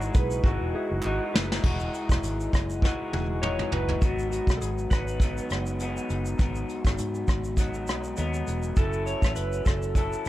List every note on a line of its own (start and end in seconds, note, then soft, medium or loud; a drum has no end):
0.00 0.44 E3 medium
0.00 0.45 G#3 medium
0.00 0.45 D#4 medium
0.00 0.46 F#4 medium
0.00 shaker medium
0.14 0.39 B1 loud
0.14 0.59 G#4 medium
0.14 0.45 B4 medium
0.14 0.58 B4 medium
0.14 kick loud
0.14 closed hi-hat medium
0.14 shaker medium
0.31 shaker medium
0.44 0.57 G#1 medium
0.44 1.04 E3 medium
0.44 1.05 G#3 medium
0.44 1.06 D#4 medium
0.44 1.29 F#4 medium
0.44 1.06 F#4 medium
0.44 kick loud
0.61 0.72 E1 medium
0.75 0.90 E4 medium
0.75 0.90 G#4 medium
0.91 1.02 F#1 medium
1.03 1.18 G#1 loud
1.03 1.63 E3 medium
1.03 1.63 G#3 medium
1.03 1.65 D#4 medium
1.03 clap medium
1.07 1.66 F#4 medium
1.34 1.58 F#1 medium
1.34 1.50 G#4 medium
1.34 1.49 B4 medium
1.34 snare loud
1.52 snare loud
1.63 1.87 E1 loud
1.63 2.82 E3 medium
1.63 2.83 G#3 medium
1.63 2.84 D#4 medium
1.63 2.84 F#4 medium
1.63 kick loud
1.63 crash medium
1.80 shaker soft
1.94 closed hi-hat medium
1.94 shaker soft
2.09 2.20 E1 medium
2.09 kick medium
2.09 cross-stick medium
2.09 shaker medium
2.23 2.47 G#1 medium
2.23 closed hi-hat medium
2.23 shaker medium
2.40 shaker soft
2.53 2.90 F#1 medium
2.53 kick medium
2.53 cross-stick medium
2.53 closed hi-hat medium
2.53 shaker soft
2.70 shaker medium
2.82 3.41 E3 medium
2.82 3.43 G#3 medium
2.82 3.43 D#4 medium
2.82 3.44 F#4 medium
2.82 kick medium
2.82 snare medium
3.13 3.60 E1 loud
3.13 high tom medium
3.42 4.01 E3 medium
3.42 4.02 G#3 medium
3.42 4.03 D#4 medium
3.42 4.05 F#4 medium
3.42 3.72 C#5 medium
3.42 mid tom medium
3.59 mid tom medium
3.72 3.96 F#1 medium
3.72 4.03 B4 medium
3.72 floor tom medium
3.89 floor tom medium
4.01 4.38 G#1 loud
4.01 4.90 G#2 medium
4.01 4.93 F#3 medium
4.01 4.91 B3 medium
4.01 4.90 D#4 medium
4.01 4.30 F#4 medium
4.01 kick loud
4.01 closed hi-hat medium
4.01 shaker medium
4.19 shaker soft
4.31 4.53 F#4 medium
4.31 closed hi-hat soft
4.31 shaker medium
4.47 4.58 B1 medium
4.47 kick medium
4.47 cross-stick medium
4.47 shaker medium
4.57 4.61 A4 medium
4.61 4.85 G#1 medium
4.61 4.69 G#4 medium
4.61 closed hi-hat medium
4.61 shaker medium
4.78 shaker soft
4.90 5.38 G#1 medium
4.90 5.20 F#3 soft
4.90 5.20 B3 soft
4.90 5.20 D#4 medium
4.90 5.46 B4 medium
4.90 kick medium
4.90 cross-stick medium
4.90 closed hi-hat soft
4.90 shaker medium
5.08 shaker medium
5.20 5.79 G#2 medium
5.20 5.80 F#3 medium
5.20 5.80 B3 medium
5.20 5.81 D#4 medium
5.20 kick medium
5.20 closed hi-hat medium
5.20 shaker medium
5.38 shaker medium
5.50 5.98 F#1 medium
5.50 cross-stick medium
5.50 closed hi-hat soft
5.50 shaker soft
5.66 shaker medium
5.80 6.37 G#2 medium
5.80 6.39 F#3 medium
5.80 6.38 B3 medium
5.80 6.40 D#4 medium
5.80 closed hi-hat medium
5.80 shaker medium
5.97 shaker medium
6.10 6.34 F#1 medium
6.10 closed hi-hat soft
6.10 shaker medium
6.26 shaker medium
6.38 6.63 G#1 loud
6.38 7.56 G#2 medium
6.38 7.58 F#3 medium
6.38 7.58 B3 medium
6.38 7.58 D#4 medium
6.38 kick loud
6.38 closed hi-hat medium
6.38 shaker medium
6.55 shaker soft
6.69 closed hi-hat soft
6.69 shaker soft
6.85 6.96 G#1 medium
6.85 kick medium
6.85 cross-stick medium
6.85 shaker medium
6.98 7.23 G#2 medium
6.98 closed hi-hat medium
6.98 shaker medium
7.15 shaker soft
7.28 7.89 G#1 medium
7.28 kick medium
7.28 cross-stick medium
7.28 closed hi-hat soft
7.28 shaker soft
7.44 shaker medium
7.57 8.15 G#2 medium
7.57 8.17 F#3 medium
7.57 8.17 B3 medium
7.57 8.17 D#4 medium
7.57 kick medium
7.57 closed hi-hat medium
7.57 shaker medium
7.74 shaker medium
7.87 8.12 B1 medium
7.87 cross-stick medium
7.87 closed hi-hat soft
7.87 shaker soft
8.04 shaker medium
8.17 8.42 D#2 medium
8.17 8.76 G#2 medium
8.17 8.77 F#3 medium
8.17 8.77 B3 medium
8.17 8.77 D#4 medium
8.17 closed hi-hat medium
8.17 shaker medium
8.34 shaker medium
8.47 8.71 E1 medium
8.47 closed hi-hat soft
8.47 shaker soft
8.63 shaker medium
8.76 9.14 F#1 loud
8.76 9.94 F#3 medium
8.76 9.95 C#4 medium
8.76 9.96 E4 medium
8.76 9.08 A4 medium
8.76 kick loud
8.76 closed hi-hat medium
8.76 shaker medium
8.80 9.96 A4 medium
8.93 shaker soft
9.06 9.34 C#5 medium
9.06 closed hi-hat soft
9.06 shaker medium
9.22 9.33 A1 medium
9.22 kick medium
9.22 cross-stick medium
9.22 shaker medium
9.36 9.60 F#1 medium
9.36 9.64 B4 medium
9.36 closed hi-hat medium
9.36 shaker medium
9.53 shaker soft
9.65 10.14 F#1 medium
9.65 10.21 A4 medium
9.65 kick medium
9.65 cross-stick medium
9.65 closed hi-hat soft
9.65 shaker soft
9.83 shaker medium
9.95 10.29 F#3 medium
9.95 10.29 C#4 medium
9.95 10.29 E4 medium
9.95 10.29 A4 medium
9.95 kick medium
9.95 closed hi-hat medium
9.95 shaker medium
10.13 shaker medium
10.25 closed hi-hat soft
10.25 shaker soft